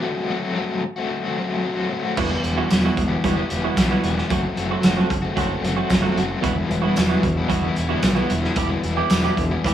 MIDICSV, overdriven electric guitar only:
0, 0, Header, 1, 3, 480
1, 0, Start_track
1, 0, Key_signature, 1, "minor"
1, 0, Tempo, 533333
1, 35, Time_signature, 4, 2, 24, 8
1, 8764, End_track
2, 0, Start_track
2, 0, Title_t, "Overdriven electric guitar"
2, 0, Program_c, 0, 29
2, 4, Note_on_c, 0, 54, 90
2, 20, Note_on_c, 0, 57, 91
2, 26, Note_on_c, 0, 60, 96
2, 31, Note_on_c, 0, 66, 96
2, 253, Note_off_c, 0, 54, 0
2, 253, Note_off_c, 0, 57, 0
2, 256, Note_on_c, 0, 54, 78
2, 264, Note_on_c, 0, 57, 79
2, 265, Note_off_c, 0, 60, 0
2, 276, Note_off_c, 0, 66, 0
2, 276, Note_on_c, 0, 60, 94
2, 279, Note_on_c, 0, 66, 84
2, 376, Note_off_c, 0, 66, 0
2, 379, Note_off_c, 0, 60, 0
2, 380, Note_on_c, 0, 66, 74
2, 390, Note_on_c, 0, 60, 63
2, 391, Note_off_c, 0, 57, 0
2, 401, Note_on_c, 0, 57, 60
2, 489, Note_off_c, 0, 54, 0
2, 493, Note_on_c, 0, 54, 86
2, 498, Note_off_c, 0, 57, 0
2, 506, Note_off_c, 0, 60, 0
2, 508, Note_on_c, 0, 57, 82
2, 517, Note_on_c, 0, 60, 96
2, 523, Note_off_c, 0, 66, 0
2, 527, Note_on_c, 0, 66, 99
2, 742, Note_off_c, 0, 60, 0
2, 744, Note_off_c, 0, 57, 0
2, 752, Note_off_c, 0, 66, 0
2, 755, Note_off_c, 0, 54, 0
2, 867, Note_on_c, 0, 66, 80
2, 879, Note_on_c, 0, 60, 66
2, 890, Note_on_c, 0, 57, 59
2, 1112, Note_off_c, 0, 66, 0
2, 1115, Note_off_c, 0, 60, 0
2, 1115, Note_on_c, 0, 66, 72
2, 1125, Note_on_c, 0, 60, 62
2, 1133, Note_off_c, 0, 57, 0
2, 1144, Note_on_c, 0, 57, 54
2, 1237, Note_off_c, 0, 57, 0
2, 1239, Note_on_c, 0, 54, 69
2, 1246, Note_off_c, 0, 60, 0
2, 1248, Note_on_c, 0, 57, 73
2, 1257, Note_on_c, 0, 60, 82
2, 1262, Note_off_c, 0, 66, 0
2, 1266, Note_on_c, 0, 66, 80
2, 1466, Note_off_c, 0, 54, 0
2, 1470, Note_on_c, 0, 54, 104
2, 1473, Note_off_c, 0, 57, 0
2, 1479, Note_off_c, 0, 60, 0
2, 1484, Note_on_c, 0, 57, 98
2, 1490, Note_on_c, 0, 60, 105
2, 1493, Note_off_c, 0, 66, 0
2, 1496, Note_on_c, 0, 66, 105
2, 1576, Note_off_c, 0, 66, 0
2, 1580, Note_on_c, 0, 66, 75
2, 1583, Note_off_c, 0, 60, 0
2, 1593, Note_off_c, 0, 57, 0
2, 1593, Note_on_c, 0, 60, 64
2, 1604, Note_on_c, 0, 57, 54
2, 1702, Note_off_c, 0, 54, 0
2, 1704, Note_off_c, 0, 57, 0
2, 1706, Note_on_c, 0, 54, 78
2, 1711, Note_off_c, 0, 60, 0
2, 1714, Note_on_c, 0, 57, 79
2, 1722, Note_on_c, 0, 60, 78
2, 1727, Note_off_c, 0, 66, 0
2, 1731, Note_on_c, 0, 66, 79
2, 1823, Note_off_c, 0, 66, 0
2, 1827, Note_on_c, 0, 66, 75
2, 1834, Note_off_c, 0, 60, 0
2, 1845, Note_on_c, 0, 60, 68
2, 1848, Note_off_c, 0, 57, 0
2, 1858, Note_on_c, 0, 57, 64
2, 1944, Note_on_c, 0, 40, 78
2, 1945, Note_off_c, 0, 60, 0
2, 1952, Note_off_c, 0, 57, 0
2, 1952, Note_on_c, 0, 47, 93
2, 1956, Note_off_c, 0, 54, 0
2, 1959, Note_on_c, 0, 52, 94
2, 1965, Note_on_c, 0, 55, 90
2, 1970, Note_off_c, 0, 66, 0
2, 1970, Note_on_c, 0, 59, 97
2, 1973, Note_on_c, 0, 67, 88
2, 2174, Note_off_c, 0, 52, 0
2, 2179, Note_off_c, 0, 55, 0
2, 2185, Note_on_c, 0, 52, 74
2, 2190, Note_on_c, 0, 55, 95
2, 2192, Note_off_c, 0, 59, 0
2, 2197, Note_off_c, 0, 67, 0
2, 2203, Note_on_c, 0, 59, 87
2, 2208, Note_on_c, 0, 67, 87
2, 2289, Note_off_c, 0, 67, 0
2, 2295, Note_off_c, 0, 59, 0
2, 2300, Note_on_c, 0, 67, 80
2, 2306, Note_on_c, 0, 59, 72
2, 2310, Note_off_c, 0, 55, 0
2, 2311, Note_off_c, 0, 52, 0
2, 2321, Note_on_c, 0, 55, 71
2, 2322, Note_on_c, 0, 52, 62
2, 2403, Note_off_c, 0, 47, 0
2, 2407, Note_off_c, 0, 40, 0
2, 2413, Note_off_c, 0, 52, 0
2, 2414, Note_on_c, 0, 47, 85
2, 2418, Note_on_c, 0, 40, 89
2, 2421, Note_off_c, 0, 55, 0
2, 2424, Note_on_c, 0, 52, 87
2, 2425, Note_off_c, 0, 59, 0
2, 2426, Note_off_c, 0, 67, 0
2, 2432, Note_on_c, 0, 55, 84
2, 2436, Note_on_c, 0, 59, 108
2, 2437, Note_on_c, 0, 67, 91
2, 2649, Note_off_c, 0, 52, 0
2, 2651, Note_off_c, 0, 55, 0
2, 2653, Note_off_c, 0, 59, 0
2, 2659, Note_off_c, 0, 67, 0
2, 2769, Note_on_c, 0, 67, 75
2, 2779, Note_on_c, 0, 59, 71
2, 2794, Note_on_c, 0, 55, 66
2, 2802, Note_on_c, 0, 52, 59
2, 2903, Note_off_c, 0, 47, 0
2, 2905, Note_off_c, 0, 40, 0
2, 3012, Note_off_c, 0, 67, 0
2, 3021, Note_off_c, 0, 59, 0
2, 3023, Note_on_c, 0, 67, 88
2, 3031, Note_off_c, 0, 55, 0
2, 3032, Note_on_c, 0, 59, 78
2, 3040, Note_off_c, 0, 52, 0
2, 3041, Note_on_c, 0, 55, 60
2, 3051, Note_on_c, 0, 52, 67
2, 3119, Note_off_c, 0, 52, 0
2, 3130, Note_off_c, 0, 55, 0
2, 3130, Note_on_c, 0, 52, 64
2, 3139, Note_off_c, 0, 59, 0
2, 3141, Note_on_c, 0, 55, 73
2, 3147, Note_off_c, 0, 67, 0
2, 3150, Note_on_c, 0, 59, 77
2, 3157, Note_on_c, 0, 67, 82
2, 3372, Note_on_c, 0, 40, 90
2, 3375, Note_off_c, 0, 52, 0
2, 3380, Note_off_c, 0, 55, 0
2, 3385, Note_on_c, 0, 47, 103
2, 3386, Note_off_c, 0, 59, 0
2, 3386, Note_on_c, 0, 52, 112
2, 3390, Note_off_c, 0, 67, 0
2, 3390, Note_on_c, 0, 55, 95
2, 3397, Note_on_c, 0, 59, 116
2, 3401, Note_on_c, 0, 67, 114
2, 3478, Note_off_c, 0, 67, 0
2, 3489, Note_off_c, 0, 59, 0
2, 3489, Note_on_c, 0, 67, 71
2, 3498, Note_off_c, 0, 55, 0
2, 3500, Note_on_c, 0, 59, 70
2, 3505, Note_off_c, 0, 52, 0
2, 3509, Note_on_c, 0, 55, 66
2, 3516, Note_on_c, 0, 52, 66
2, 3611, Note_off_c, 0, 52, 0
2, 3621, Note_on_c, 0, 52, 79
2, 3627, Note_off_c, 0, 55, 0
2, 3636, Note_off_c, 0, 59, 0
2, 3638, Note_on_c, 0, 55, 80
2, 3639, Note_off_c, 0, 67, 0
2, 3647, Note_on_c, 0, 59, 94
2, 3650, Note_on_c, 0, 67, 91
2, 3733, Note_off_c, 0, 67, 0
2, 3742, Note_off_c, 0, 40, 0
2, 3744, Note_off_c, 0, 59, 0
2, 3744, Note_on_c, 0, 67, 76
2, 3749, Note_off_c, 0, 47, 0
2, 3755, Note_on_c, 0, 59, 69
2, 3759, Note_off_c, 0, 55, 0
2, 3765, Note_off_c, 0, 52, 0
2, 3770, Note_on_c, 0, 55, 66
2, 3775, Note_on_c, 0, 52, 57
2, 3849, Note_off_c, 0, 52, 0
2, 3852, Note_on_c, 0, 54, 92
2, 3854, Note_off_c, 0, 67, 0
2, 3855, Note_off_c, 0, 55, 0
2, 3858, Note_on_c, 0, 57, 96
2, 3859, Note_off_c, 0, 59, 0
2, 3865, Note_on_c, 0, 60, 105
2, 3875, Note_on_c, 0, 66, 96
2, 4092, Note_off_c, 0, 54, 0
2, 4096, Note_on_c, 0, 54, 80
2, 4097, Note_off_c, 0, 57, 0
2, 4097, Note_off_c, 0, 60, 0
2, 4107, Note_on_c, 0, 57, 80
2, 4108, Note_on_c, 0, 60, 79
2, 4120, Note_off_c, 0, 66, 0
2, 4123, Note_on_c, 0, 66, 96
2, 4212, Note_off_c, 0, 66, 0
2, 4216, Note_on_c, 0, 66, 72
2, 4217, Note_off_c, 0, 60, 0
2, 4228, Note_on_c, 0, 60, 67
2, 4232, Note_off_c, 0, 57, 0
2, 4243, Note_on_c, 0, 57, 56
2, 4326, Note_off_c, 0, 54, 0
2, 4329, Note_on_c, 0, 54, 82
2, 4330, Note_off_c, 0, 57, 0
2, 4341, Note_off_c, 0, 60, 0
2, 4341, Note_on_c, 0, 57, 102
2, 4352, Note_on_c, 0, 60, 91
2, 4356, Note_off_c, 0, 66, 0
2, 4360, Note_on_c, 0, 66, 113
2, 4568, Note_off_c, 0, 60, 0
2, 4571, Note_off_c, 0, 57, 0
2, 4574, Note_off_c, 0, 54, 0
2, 4575, Note_off_c, 0, 66, 0
2, 4699, Note_on_c, 0, 66, 78
2, 4716, Note_on_c, 0, 60, 76
2, 4727, Note_on_c, 0, 57, 60
2, 4933, Note_off_c, 0, 66, 0
2, 4944, Note_on_c, 0, 66, 78
2, 4954, Note_off_c, 0, 60, 0
2, 4965, Note_on_c, 0, 60, 73
2, 4966, Note_off_c, 0, 57, 0
2, 4976, Note_on_c, 0, 57, 64
2, 5073, Note_off_c, 0, 57, 0
2, 5076, Note_on_c, 0, 54, 65
2, 5079, Note_off_c, 0, 60, 0
2, 5084, Note_on_c, 0, 57, 75
2, 5090, Note_on_c, 0, 60, 88
2, 5093, Note_off_c, 0, 66, 0
2, 5104, Note_on_c, 0, 66, 79
2, 5296, Note_off_c, 0, 54, 0
2, 5303, Note_off_c, 0, 57, 0
2, 5306, Note_on_c, 0, 54, 103
2, 5310, Note_off_c, 0, 60, 0
2, 5314, Note_on_c, 0, 57, 93
2, 5320, Note_off_c, 0, 66, 0
2, 5320, Note_on_c, 0, 60, 102
2, 5331, Note_on_c, 0, 66, 113
2, 5410, Note_off_c, 0, 66, 0
2, 5420, Note_on_c, 0, 66, 77
2, 5422, Note_off_c, 0, 60, 0
2, 5433, Note_on_c, 0, 60, 66
2, 5434, Note_off_c, 0, 57, 0
2, 5444, Note_on_c, 0, 57, 61
2, 5533, Note_off_c, 0, 54, 0
2, 5544, Note_on_c, 0, 54, 83
2, 5546, Note_off_c, 0, 57, 0
2, 5556, Note_off_c, 0, 60, 0
2, 5557, Note_on_c, 0, 57, 84
2, 5563, Note_off_c, 0, 66, 0
2, 5567, Note_on_c, 0, 60, 92
2, 5573, Note_on_c, 0, 66, 104
2, 5639, Note_off_c, 0, 66, 0
2, 5649, Note_on_c, 0, 66, 71
2, 5656, Note_off_c, 0, 60, 0
2, 5667, Note_off_c, 0, 57, 0
2, 5667, Note_on_c, 0, 60, 60
2, 5678, Note_on_c, 0, 57, 57
2, 5766, Note_off_c, 0, 66, 0
2, 5766, Note_on_c, 0, 40, 96
2, 5767, Note_on_c, 0, 47, 97
2, 5772, Note_off_c, 0, 54, 0
2, 5775, Note_off_c, 0, 60, 0
2, 5776, Note_on_c, 0, 52, 98
2, 5780, Note_off_c, 0, 57, 0
2, 5785, Note_on_c, 0, 55, 109
2, 5788, Note_on_c, 0, 59, 88
2, 5793, Note_on_c, 0, 64, 102
2, 6019, Note_off_c, 0, 52, 0
2, 6023, Note_on_c, 0, 52, 70
2, 6026, Note_off_c, 0, 55, 0
2, 6029, Note_on_c, 0, 55, 86
2, 6031, Note_off_c, 0, 59, 0
2, 6035, Note_on_c, 0, 59, 89
2, 6040, Note_off_c, 0, 64, 0
2, 6044, Note_on_c, 0, 64, 84
2, 6131, Note_off_c, 0, 64, 0
2, 6134, Note_on_c, 0, 64, 74
2, 6148, Note_off_c, 0, 59, 0
2, 6151, Note_on_c, 0, 59, 74
2, 6160, Note_off_c, 0, 55, 0
2, 6163, Note_on_c, 0, 55, 56
2, 6165, Note_off_c, 0, 52, 0
2, 6169, Note_on_c, 0, 52, 59
2, 6260, Note_off_c, 0, 47, 0
2, 6268, Note_off_c, 0, 40, 0
2, 6271, Note_on_c, 0, 40, 90
2, 6275, Note_off_c, 0, 52, 0
2, 6277, Note_on_c, 0, 47, 98
2, 6279, Note_on_c, 0, 52, 110
2, 6286, Note_off_c, 0, 55, 0
2, 6288, Note_off_c, 0, 59, 0
2, 6290, Note_on_c, 0, 55, 100
2, 6292, Note_on_c, 0, 59, 104
2, 6295, Note_off_c, 0, 64, 0
2, 6298, Note_on_c, 0, 64, 102
2, 6504, Note_off_c, 0, 52, 0
2, 6510, Note_off_c, 0, 55, 0
2, 6510, Note_off_c, 0, 59, 0
2, 6513, Note_off_c, 0, 64, 0
2, 6633, Note_on_c, 0, 64, 73
2, 6642, Note_on_c, 0, 59, 78
2, 6649, Note_on_c, 0, 55, 60
2, 6659, Note_on_c, 0, 52, 66
2, 6755, Note_off_c, 0, 47, 0
2, 6874, Note_off_c, 0, 64, 0
2, 6878, Note_on_c, 0, 64, 71
2, 6885, Note_off_c, 0, 59, 0
2, 6889, Note_on_c, 0, 59, 68
2, 6890, Note_off_c, 0, 55, 0
2, 6894, Note_on_c, 0, 55, 67
2, 6903, Note_off_c, 0, 52, 0
2, 6907, Note_on_c, 0, 52, 69
2, 6988, Note_off_c, 0, 52, 0
2, 6991, Note_on_c, 0, 52, 73
2, 6999, Note_off_c, 0, 55, 0
2, 7002, Note_on_c, 0, 55, 78
2, 7005, Note_off_c, 0, 59, 0
2, 7009, Note_on_c, 0, 59, 81
2, 7016, Note_off_c, 0, 64, 0
2, 7020, Note_on_c, 0, 64, 84
2, 7229, Note_off_c, 0, 40, 0
2, 7232, Note_on_c, 0, 40, 114
2, 7237, Note_off_c, 0, 52, 0
2, 7237, Note_on_c, 0, 47, 103
2, 7240, Note_on_c, 0, 52, 98
2, 7247, Note_off_c, 0, 55, 0
2, 7249, Note_off_c, 0, 64, 0
2, 7250, Note_on_c, 0, 55, 105
2, 7251, Note_off_c, 0, 59, 0
2, 7253, Note_on_c, 0, 64, 114
2, 7255, Note_on_c, 0, 59, 119
2, 7338, Note_off_c, 0, 64, 0
2, 7342, Note_on_c, 0, 64, 71
2, 7354, Note_off_c, 0, 59, 0
2, 7358, Note_on_c, 0, 59, 64
2, 7360, Note_off_c, 0, 55, 0
2, 7364, Note_on_c, 0, 55, 65
2, 7368, Note_off_c, 0, 52, 0
2, 7372, Note_on_c, 0, 52, 59
2, 7475, Note_off_c, 0, 52, 0
2, 7478, Note_on_c, 0, 52, 88
2, 7483, Note_off_c, 0, 55, 0
2, 7485, Note_off_c, 0, 59, 0
2, 7486, Note_on_c, 0, 55, 84
2, 7488, Note_on_c, 0, 59, 82
2, 7500, Note_off_c, 0, 64, 0
2, 7504, Note_on_c, 0, 64, 94
2, 7582, Note_off_c, 0, 64, 0
2, 7586, Note_on_c, 0, 64, 69
2, 7596, Note_off_c, 0, 47, 0
2, 7597, Note_off_c, 0, 59, 0
2, 7600, Note_on_c, 0, 59, 68
2, 7604, Note_off_c, 0, 55, 0
2, 7608, Note_on_c, 0, 55, 68
2, 7609, Note_off_c, 0, 52, 0
2, 7612, Note_on_c, 0, 52, 65
2, 7706, Note_off_c, 0, 40, 0
2, 7709, Note_on_c, 0, 40, 95
2, 7714, Note_off_c, 0, 52, 0
2, 7717, Note_on_c, 0, 52, 90
2, 7718, Note_on_c, 0, 47, 100
2, 7724, Note_off_c, 0, 59, 0
2, 7725, Note_off_c, 0, 55, 0
2, 7728, Note_on_c, 0, 59, 102
2, 7729, Note_on_c, 0, 55, 94
2, 7733, Note_off_c, 0, 64, 0
2, 7737, Note_on_c, 0, 64, 97
2, 7937, Note_off_c, 0, 52, 0
2, 7947, Note_on_c, 0, 52, 83
2, 7952, Note_off_c, 0, 55, 0
2, 7957, Note_off_c, 0, 59, 0
2, 7962, Note_on_c, 0, 55, 79
2, 7965, Note_off_c, 0, 64, 0
2, 7968, Note_on_c, 0, 59, 88
2, 7976, Note_on_c, 0, 64, 85
2, 8062, Note_off_c, 0, 64, 0
2, 8073, Note_on_c, 0, 64, 63
2, 8076, Note_off_c, 0, 59, 0
2, 8079, Note_off_c, 0, 55, 0
2, 8086, Note_on_c, 0, 59, 67
2, 8090, Note_on_c, 0, 55, 72
2, 8091, Note_off_c, 0, 52, 0
2, 8101, Note_on_c, 0, 52, 63
2, 8180, Note_off_c, 0, 47, 0
2, 8181, Note_off_c, 0, 40, 0
2, 8191, Note_on_c, 0, 40, 92
2, 8191, Note_on_c, 0, 47, 87
2, 8193, Note_off_c, 0, 52, 0
2, 8193, Note_off_c, 0, 55, 0
2, 8197, Note_off_c, 0, 59, 0
2, 8200, Note_off_c, 0, 64, 0
2, 8203, Note_on_c, 0, 55, 94
2, 8204, Note_on_c, 0, 52, 92
2, 8208, Note_on_c, 0, 59, 104
2, 8211, Note_on_c, 0, 64, 98
2, 8433, Note_off_c, 0, 55, 0
2, 8435, Note_off_c, 0, 64, 0
2, 8438, Note_off_c, 0, 52, 0
2, 8438, Note_off_c, 0, 59, 0
2, 8560, Note_on_c, 0, 64, 77
2, 8565, Note_on_c, 0, 59, 70
2, 8576, Note_on_c, 0, 55, 66
2, 8587, Note_on_c, 0, 52, 67
2, 8676, Note_off_c, 0, 40, 0
2, 8676, Note_off_c, 0, 47, 0
2, 8764, Note_off_c, 0, 52, 0
2, 8764, Note_off_c, 0, 55, 0
2, 8764, Note_off_c, 0, 59, 0
2, 8764, Note_off_c, 0, 64, 0
2, 8764, End_track
3, 0, Start_track
3, 0, Title_t, "Muted overdriven electric guitar strokes"
3, 753, Note_on_c, 9, 29, 49
3, 843, Note_off_c, 9, 29, 0
3, 2660, Note_on_c, 9, 29, 45
3, 2750, Note_off_c, 9, 29, 0
3, 4577, Note_on_c, 9, 29, 41
3, 4667, Note_off_c, 9, 29, 0
3, 6507, Note_on_c, 9, 29, 46
3, 6597, Note_off_c, 9, 29, 0
3, 8444, Note_on_c, 9, 29, 48
3, 8534, Note_off_c, 9, 29, 0
3, 8764, End_track
0, 0, End_of_file